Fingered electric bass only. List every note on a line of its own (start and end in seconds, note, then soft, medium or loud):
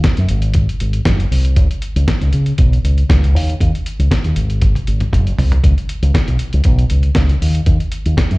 0.18 0.27 F#2 medium
0.30 0.66 G#1 loud
0.81 0.99 G#1 medium
1.06 1.24 F#1 loud
1.31 1.57 C2 medium
1.57 1.66 C#2 loud
1.96 2.04 C#2 medium
2.21 2.30 C#2 medium
2.33 2.51 C#3 medium
2.59 2.77 B1 loud
2.84 3.02 C#2 medium
3.10 3.35 C#2 loud
3.35 3.53 D#2 loud
3.61 3.70 D#2 loud
3.99 4.08 C#2 loud
4.25 4.33 D#2 medium
4.36 4.72 G#1 medium
4.87 5.05 G#1 medium
5.13 5.31 F#1 loud
5.38 5.56 C2 medium
5.64 5.73 C#2 loud
6.02 6.11 C#2 loud
6.28 6.36 B1 medium
6.54 6.62 C#2 loud
6.65 6.83 B1 loud
6.91 7.09 C#2 medium
7.16 7.34 C#2 loud
7.42 7.59 D#2 medium
7.67 7.76 D#2 loud
8.06 8.14 D#2 loud
8.31 8.38 F#2 medium